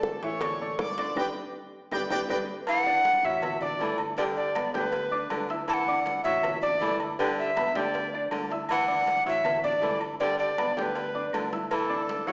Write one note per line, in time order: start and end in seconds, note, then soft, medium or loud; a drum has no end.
0.00 0.17 D2 medium
0.00 0.16 A3 medium
0.00 0.16 A4 medium
0.00 0.19 A4 medium
0.00 0.17 D5 medium
0.00 0.19 A5 medium
0.00 high bongo medium
0.00 high conga medium
0.00 low timbale medium
0.22 0.75 A1 medium
0.22 0.38 E3 medium
0.22 0.38 E4 medium
0.22 0.75 C#5 loud
0.22 0.39 E5 medium
0.22 0.75 C#6 medium
0.22 high timbale medium
0.41 0.57 A3 medium
0.41 0.57 A4 medium
0.41 0.58 D5 medium
0.41 high bongo medium
0.41 high conga soft
0.41 low conga medium
0.41 high timbale loud
0.41 claves medium
0.61 0.92 A3 medium
0.61 0.92 A4 medium
0.61 0.92 D5 medium
0.61 high conga soft
0.78 1.14 G1 medium
0.78 0.98 D5 loud
0.78 0.97 D6 medium
0.78 high bongo medium
0.78 low bongo medium
0.78 high conga medium
0.78 high timbale medium
0.78 low timbale medium
0.98 1.13 D3 medium
0.98 1.14 D4 medium
0.98 1.14 D5 medium
0.98 1.17 D5 loud
0.98 1.16 D6 medium
0.98 high conga soft
0.98 high timbale medium
0.98 claves medium
1.15 1.30 G1 loud
1.15 1.29 D4 medium
1.15 1.29 G4 medium
1.15 1.29 B4 medium
1.15 1.27 B4 medium
1.15 1.27 D5 medium
1.15 1.26 G5 medium
1.15 low bongo medium
1.15 high conga medium
1.15 high timbale medium
1.15 claves loud
1.91 2.06 G1 loud
1.91 2.05 D4 medium
1.91 2.05 G4 medium
1.91 2.02 B4 medium
1.91 2.05 B4 medium
1.91 2.02 D5 loud
1.91 2.01 G5 loud
1.91 low bongo medium
1.91 high conga loud
1.91 high timbale loud
1.91 claves loud
2.10 2.24 G1 medium
2.10 2.23 D4 medium
2.10 2.23 G4 loud
2.10 2.20 B4 medium
2.10 2.23 B4 loud
2.10 2.20 D5 medium
2.10 2.20 G5 loud
2.10 low bongo loud
2.10 high conga loud
2.10 high timbale loud
2.10 claves medium
2.29 2.43 G1 medium
2.29 2.42 D4 medium
2.29 2.42 G4 medium
2.29 2.38 B4 medium
2.29 2.42 B4 medium
2.29 2.39 D5 medium
2.29 2.39 G5 medium
2.29 low bongo medium
2.29 high conga loud
2.29 high timbale loud
2.29 claves loud
2.67 2.99 E3 loud
2.67 3.27 F#5 loud
2.67 cowbell loud
2.67 high conga soft
2.67 low agogo loud
2.67 claves medium
2.87 3.17 D4 medium
2.87 3.17 D5 medium
2.87 3.18 D6 medium
2.87 high conga soft
3.05 cowbell medium
3.05 high conga medium
3.05 low timbale medium
3.05 low agogo medium
3.23 3.76 A1 loud
3.23 3.56 F#3 medium
3.23 3.55 E4 medium
3.23 3.55 E5 medium
3.23 3.62 E5 loud
3.23 3.55 E6 medium
3.23 cowbell medium
3.42 cowbell loud
3.42 high conga soft
3.42 low conga medium
3.42 low agogo loud
3.42 claves medium
3.61 3.77 D4 medium
3.61 3.77 D5 medium
3.61 3.97 D5 loud
3.61 3.77 D6 medium
3.61 high conga soft
3.61 low conga medium
3.61 low agogo medium
3.79 4.68 G1 medium
3.79 4.01 E3 medium
3.79 4.12 A3 medium
3.79 4.12 A4 medium
3.79 4.12 A5 medium
3.79 cowbell medium
3.79 high conga medium
3.79 low timbale medium
3.98 high conga soft
3.98 low agogo loud
3.98 claves medium
4.17 4.49 D3 medium
4.17 4.49 G3 medium
4.17 4.49 G4 medium
4.17 4.24 D5 loud
4.17 4.50 G5 medium
4.17 cowbell loud
4.17 high conga soft
4.17 low agogo medium
4.37 4.72 D5 medium
4.37 high conga soft
4.55 4.71 B3 medium
4.55 4.71 B4 medium
4.55 4.71 B5 medium
4.55 cowbell medium
4.55 high conga loud
4.55 low timbale medium
4.55 low agogo loud
4.55 claves medium
4.74 5.27 D2 loud
4.74 5.06 D3 medium
4.74 5.05 G4 medium
4.74 5.46 B4 loud
4.74 5.05 G5 medium
4.74 5.05 G6 medium
4.74 cowbell medium
4.74 high conga loud
4.92 cowbell loud
4.92 high conga soft
4.92 low agogo medium
5.11 5.42 D4 medium
5.11 5.43 D5 medium
5.11 5.43 D6 medium
5.30 6.19 D2 medium
5.30 5.50 D3 medium
5.30 cowbell medium
5.30 high conga medium
5.30 low timbale medium
5.30 low agogo loud
5.30 claves medium
5.49 5.81 E4 medium
5.49 5.81 E5 medium
5.49 5.81 E6 medium
5.49 cowbell medium
5.49 low agogo medium
5.68 6.00 E3 loud
5.68 5.75 A5 loud
5.68 cowbell loud
5.68 high conga soft
5.68 low agogo loud
5.68 claves medium
5.74 6.21 F#5 loud
5.88 6.18 D4 medium
5.88 6.18 D5 medium
5.88 6.19 D6 medium
5.88 high conga soft
6.06 cowbell medium
6.06 high conga medium
6.06 low timbale medium
6.06 low agogo medium
6.24 6.77 A1 loud
6.24 6.56 F#3 medium
6.24 6.55 E4 medium
6.24 6.59 E5 loud
6.24 6.56 E5 medium
6.24 6.56 E6 medium
6.24 cowbell medium
6.43 cowbell loud
6.43 high conga soft
6.43 low conga medium
6.43 low agogo loud
6.43 claves medium
6.62 6.78 D4 medium
6.62 6.97 D5 loud
6.62 6.78 D5 medium
6.62 6.78 D6 medium
6.62 high conga soft
6.62 low conga medium
6.62 low agogo medium
6.80 7.69 G1 medium
6.80 7.01 E3 medium
6.80 7.12 A3 medium
6.80 7.12 A4 medium
6.80 7.13 A5 medium
6.80 cowbell medium
6.80 high conga medium
6.80 low timbale medium
7.00 high conga soft
7.00 low agogo loud
7.00 claves medium
7.19 7.51 D3 loud
7.19 7.50 G3 medium
7.19 7.50 G4 medium
7.19 7.37 B4 medium
7.19 7.50 G5 medium
7.19 cowbell loud
7.19 high conga soft
7.19 low agogo medium
7.38 7.78 E5 medium
7.38 high conga soft
7.56 7.72 B3 medium
7.56 7.72 B4 medium
7.56 7.72 B5 medium
7.56 cowbell medium
7.56 high conga loud
7.56 low timbale medium
7.56 low agogo loud
7.56 claves medium
7.75 8.27 D2 loud
7.75 8.08 D3 medium
7.75 8.06 G4 medium
7.75 8.24 D5 medium
7.75 8.07 G5 medium
7.75 8.07 G6 medium
7.75 cowbell medium
7.75 high conga loud
7.94 cowbell loud
7.94 high conga soft
7.94 low agogo medium
8.13 8.44 D4 medium
8.13 8.45 D5 medium
8.13 8.45 D6 medium
8.13 high conga soft
8.31 9.20 D2 medium
8.31 8.51 D3 medium
8.31 cowbell medium
8.31 high conga medium
8.31 low timbale medium
8.31 low agogo loud
8.31 claves medium
8.50 8.82 E4 medium
8.50 8.82 E5 medium
8.50 8.82 E6 medium
8.50 cowbell medium
8.50 low agogo medium
8.69 9.01 E3 loud
8.69 9.23 F#5 loud
8.69 cowbell loud
8.69 high conga soft
8.69 low agogo loud
8.69 claves medium
8.88 9.19 D4 medium
8.88 9.19 D5 medium
8.88 9.19 D6 medium
8.88 high conga soft
9.06 cowbell medium
9.06 high conga medium
9.06 low timbale medium
9.06 low agogo medium
9.26 9.78 A1 loud
9.26 9.58 F#3 medium
9.26 9.57 E4 medium
9.26 9.57 E5 medium
9.26 9.62 E5 loud
9.26 9.57 E6 medium
9.26 cowbell medium
9.44 cowbell loud
9.44 high conga soft
9.44 low conga medium
9.44 low agogo loud
9.44 claves medium
9.64 9.79 D4 medium
9.64 9.99 D5 loud
9.64 9.79 D5 medium
9.64 9.79 D6 medium
9.64 high conga soft
9.64 low conga medium
9.64 low agogo medium
9.82 10.71 G1 medium
9.82 10.03 E3 medium
9.82 10.13 A3 medium
9.82 10.13 A4 medium
9.82 10.13 A5 medium
9.82 cowbell medium
9.82 high conga medium
9.82 low timbale medium
10.01 high conga soft
10.01 low agogo loud
10.01 claves medium
10.20 10.52 D3 medium
10.20 10.51 G3 medium
10.20 10.52 G4 medium
10.20 10.38 D5 loud
10.20 10.52 G5 medium
10.20 cowbell loud
10.20 high conga soft
10.20 low agogo medium
10.39 10.77 D5 medium
10.39 high conga soft
10.58 10.74 B3 medium
10.58 10.74 B4 medium
10.58 10.74 B5 medium
10.58 cowbell medium
10.58 high conga loud
10.58 low timbale medium
10.58 low agogo loud
10.58 claves medium
10.76 11.29 D2 loud
10.76 11.09 D3 medium
10.76 11.08 G4 medium
10.76 10.83 D5 loud
10.76 11.08 G5 medium
10.76 11.08 G6 medium
10.76 cowbell medium
10.76 high conga medium
10.82 11.52 B4 loud
10.95 cowbell loud
10.95 high conga soft
10.95 low agogo medium
11.15 11.46 D4 medium
11.15 11.46 D5 medium
11.15 11.46 D6 medium
11.15 high conga soft
11.33 12.22 D2 medium
11.33 11.53 D3 medium
11.33 cowbell medium
11.33 high conga medium
11.33 low timbale medium
11.33 low agogo loud
11.33 claves medium
11.52 11.83 E4 medium
11.52 11.84 E5 medium
11.52 11.84 E6 medium
11.52 cowbell medium
11.52 high conga medium
11.52 low agogo medium
11.71 12.03 E3 loud
11.71 12.29 A4 medium
11.71 cowbell loud
11.71 high conga soft
11.71 low agogo loud
11.71 claves medium
11.89 12.21 D4 medium
11.89 12.21 D5 medium
11.89 12.21 D6 medium
11.89 high conga soft
12.09 cowbell medium
12.09 high conga medium
12.09 low timbale medium
12.09 low agogo medium
12.27 12.32 A1 loud
12.27 12.32 F#3 medium
12.27 12.32 E4 medium
12.27 12.32 E5 medium
12.27 12.32 F#5 loud
12.27 12.32 E6 medium
12.27 cowbell medium